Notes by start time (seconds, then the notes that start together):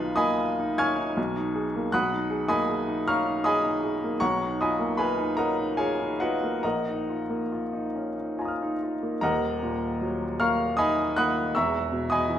Already playing: B1 D#4 B4 F5 G#5 B5
0.00 F4
0.16 A#3 D#5 G#5 B5 D#6
0.38 F4
0.59 D#4
0.78 C#4 G#5 C#6 F6 G#6
0.98 D#4
1.17 B1
1.36 D#4
1.55 G#4
1.76 A#3
1.92 B1 F#5 B5 D#6 F#6
2.12 D#4
2.30 G#4
2.48 A#3 D#5 G#5 B5 D#6
2.68 G#4
2.87 D#4
3.08 C#4 F5 A#5 C#6 F6
3.26 D#4
3.44 G#4 D#5 G#5 B5 D#6
3.64 D#4
3.83 G#4
4.04 A#3
4.20 B1 C#5 F#5 A#5 C#6
4.42 D#4
4.61 F4 D#5 G#5 B5 D#6
4.79 A#3
4.97 F4 B4 F5 G#5 B5
5.18 D#4
5.37 C#4 A#4 D#5 F#5 A#5
5.59 D#4
5.77 F4 G#4 C#5 F5 G#5
6.00 D#4
6.20 F4 F#4 B4 D#5 F#5
6.43 A#3
6.63 A#1 A#4 D#5 F#5 A#5
6.89 D#4
7.09 F4
7.30 A#3
7.52 F4
7.73 D#4
7.95 C#4
8.18 D#4
8.39 F4 G#5 A#5
8.45 D#6 F6
8.62 D#4
8.83 F4
9.03 A#3
9.21 D#1 D#2 A#4 D#5 F#5 A#5
9.63 A#2
10.01 F#3
10.40 A#3 F5 A#5 C#6 F6
10.77 D#4 D#5 G#5 B5 D#6
11.16 A#3 F#5 B5 D#6 F#6
11.55 E1 E2 E5 A#5 C#6 E6
11.92 B2
12.10 D#5 G#5 B5 D#6
12.29 E3